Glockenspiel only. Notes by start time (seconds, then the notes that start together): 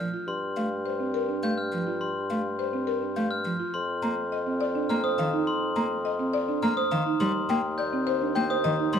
0.28 C6
1.43 G6
1.58 F6
2.01 C6
3.16 G6
3.31 F6
3.74 C6
4.89 F6
5.04 D#6
5.18 A#5
5.47 C6
6.63 F6
6.77 D#6
6.92 A#5
7.20 C6
7.78 G6
8.36 G6
8.50 D#6
8.64 A#5
8.93 C6